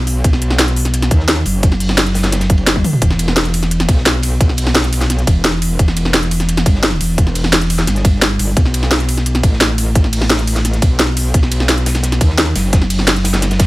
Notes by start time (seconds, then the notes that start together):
Already playing: B1
0.07 open hi-hat, ride
0.24 B1, kick, closed hi-hat, ride
0.33 snare
0.42 closed hi-hat, ride
0.50 snare
0.59 snare, closed hi-hat, ride
0.68 snare, closed hi-hat
0.76 open hi-hat, ride
0.85 snare, closed hi-hat
0.94 closed hi-hat, ride
1.02 snare, closed hi-hat
1.11 D#2, kick, closed hi-hat, ride
1.20 snare
1.28 snare, closed hi-hat, ride
1.46 F#1, open hi-hat, ride
1.63 kick, closed hi-hat, ride
1.72 snare
1.80 closed hi-hat, open hi-hat
1.89 snare
1.98 snare, closed hi-hat, ride
2.06 snare, closed hi-hat
2.14 snare, open hi-hat, ride
2.23 snare, closed hi-hat, ride
2.32 snare, closed hi-hat, ride
2.41 snare, closed hi-hat, ride
2.50 kick, closed hi-hat
2.58 ride
2.67 snare, closed hi-hat, ride
2.76 kick, high tom
2.84 open hi-hat, mid tom, ride
2.93 mid tom
3.02 E1, kick, closed hi-hat, ride
3.10 snare
3.19 closed hi-hat, ride
3.27 snare
3.36 snare, closed hi-hat, ride
3.45 snare, closed hi-hat
3.54 open hi-hat, ride
3.62 snare, closed hi-hat
3.71 closed hi-hat, ride
3.80 snare, closed hi-hat
3.88 B1, kick, closed hi-hat, ride
3.97 snare
4.06 snare, closed hi-hat, ride
4.22 open hi-hat, ride
4.41 kick, closed hi-hat, ride
4.49 snare
4.57 closed hi-hat, open hi-hat, ride
4.67 snare
4.74 snare, closed hi-hat, ride
4.84 snare, closed hi-hat
4.93 open hi-hat, ride
5.01 snare, closed hi-hat
5.10 snare, closed hi-hat, ride
5.18 snare, closed hi-hat
5.27 E1, kick, closed hi-hat, ride
5.44 snare, closed hi-hat, ride
5.62 open hi-hat, ride
5.79 E1, kick, closed hi-hat, ride
5.88 snare
5.97 closed hi-hat, ride
6.05 snare
6.14 snare, closed hi-hat, ride
6.23 snare, closed hi-hat
6.31 open hi-hat, ride
6.40 snare, closed hi-hat
6.49 closed hi-hat, ride
6.57 snare, closed hi-hat
6.66 G1, kick, closed hi-hat, ride
6.75 snare
6.83 snare, closed hi-hat, ride
7.00 E1, open hi-hat, ride
7.18 kick, closed hi-hat, ride
7.27 snare
7.35 closed hi-hat, open hi-hat, ride
7.43 snare
7.52 snare, closed hi-hat, ride
7.61 snare, closed hi-hat
7.70 open hi-hat, ride
7.79 snare, closed hi-hat
7.87 G1, snare, closed hi-hat, ride
7.96 snare, closed hi-hat
8.05 kick, closed hi-hat, ride
8.22 snare, closed hi-hat, ride
8.39 G1, open hi-hat, ride
8.57 B1, kick, closed hi-hat, ride
8.65 snare
8.74 closed hi-hat, ride
8.83 snare
8.91 snare, closed hi-hat, ride
9.00 snare, closed hi-hat
9.08 open hi-hat, ride
9.17 snare, closed hi-hat
9.26 closed hi-hat, ride
9.35 snare, closed hi-hat
9.43 A1, kick, closed hi-hat, ride
9.53 snare
9.60 snare, closed hi-hat, ride
9.78 open hi-hat, ride
9.95 kick, closed hi-hat, ride
10.04 snare
10.13 closed hi-hat, open hi-hat, ride
10.21 snare
10.30 snare, closed hi-hat, ride
10.39 snare, closed hi-hat
10.47 open hi-hat, ride
10.56 snare, closed hi-hat
10.65 snare, closed hi-hat, ride
10.73 snare, closed hi-hat
10.82 B1, kick, closed hi-hat, ride
10.99 snare, closed hi-hat, ride
11.17 open hi-hat, ride
11.34 B1, kick, closed hi-hat, ride
11.43 snare
11.52 closed hi-hat, ride
11.60 snare
11.68 snare, closed hi-hat, ride
11.78 snare, closed hi-hat
11.86 snare, open hi-hat, ride
11.95 snare, closed hi-hat, ride
12.03 snare, closed hi-hat, ride
12.12 snare, closed hi-hat
12.21 D#2, kick, closed hi-hat, ride
12.30 snare
12.38 snare, closed hi-hat, ride
12.56 F#1, snare, open hi-hat, ride
12.65 snare
12.73 kick, snare, closed hi-hat, ride
12.82 snare
12.90 closed hi-hat, open hi-hat, ride
12.99 snare
13.07 snare, closed hi-hat, ride
13.16 snare, closed hi-hat
13.24 snare, open hi-hat, ride
13.34 snare, closed hi-hat, ride
13.42 snare, closed hi-hat, ride
13.51 snare, closed hi-hat, ride
13.59 kick, snare, closed hi-hat, ride